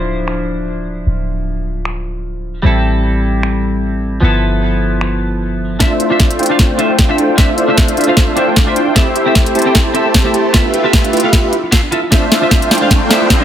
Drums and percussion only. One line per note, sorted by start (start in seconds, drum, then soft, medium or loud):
0.28 finger snap medium
1.85 finger snap medium
3.43 finger snap medium
5.01 finger snap medium
5.80 kick medium
5.80 snare soft
5.80 closed hi-hat medium
6.00 closed hi-hat medium
6.20 kick loud
6.20 snare soft
6.20 closed hi-hat medium
6.31 closed hi-hat medium
6.39 closed hi-hat soft
6.43 closed hi-hat medium
6.46 closed hi-hat medium
6.59 kick medium
6.59 snare soft
6.59 closed hi-hat medium
6.79 closed hi-hat medium
6.99 kick medium
6.99 snare medium
6.99 closed hi-hat medium
7.18 closed hi-hat medium
7.38 kick medium
7.38 snare soft
7.38 closed hi-hat medium
7.58 closed hi-hat medium
7.78 kick loud
7.78 snare medium
7.78 closed hi-hat medium
7.88 closed hi-hat medium
7.97 closed hi-hat soft
8.01 closed hi-hat medium
8.04 closed hi-hat medium
8.17 kick medium
8.17 snare medium
8.17 closed hi-hat medium
8.37 closed hi-hat medium
8.56 kick medium
8.56 snare medium
8.56 closed hi-hat medium
8.76 closed hi-hat medium
8.96 kick medium
8.96 snare medium
8.96 closed hi-hat medium
9.16 closed hi-hat medium
9.35 kick loud
9.35 snare medium
9.35 closed hi-hat medium
9.46 closed hi-hat medium
9.55 closed hi-hat soft
9.59 closed hi-hat medium
9.62 closed hi-hat medium
9.75 kick medium
9.75 snare medium
9.75 closed hi-hat medium
9.95 closed hi-hat medium
10.14 kick loud
10.14 snare medium
10.14 closed hi-hat medium
10.34 closed hi-hat medium
10.54 kick medium
10.54 snare medium
10.54 closed hi-hat medium
10.74 closed hi-hat medium
10.93 kick loud
10.93 snare medium
10.93 closed hi-hat medium
11.04 closed hi-hat medium
11.13 closed hi-hat soft
11.17 closed hi-hat medium
11.20 closed hi-hat medium
11.33 kick medium
11.33 snare medium
11.33 closed hi-hat medium
11.53 closed hi-hat medium
11.72 kick medium
11.72 snare medium
11.72 closed hi-hat medium
11.92 closed hi-hat medium
12.12 kick loud
12.12 snare medium
12.12 closed hi-hat medium
12.32 snare medium
12.32 closed hi-hat medium
12.51 kick loud
12.51 snare medium
12.51 closed hi-hat medium
12.62 closed hi-hat medium
12.71 snare medium
12.71 closed hi-hat medium
12.71 open hi-hat medium
12.78 closed hi-hat medium
12.91 kick loud
12.91 snare medium
12.91 closed hi-hat medium
13.11 snare medium
13.11 closed hi-hat medium
13.30 kick loud
13.30 snare medium
13.30 closed hi-hat medium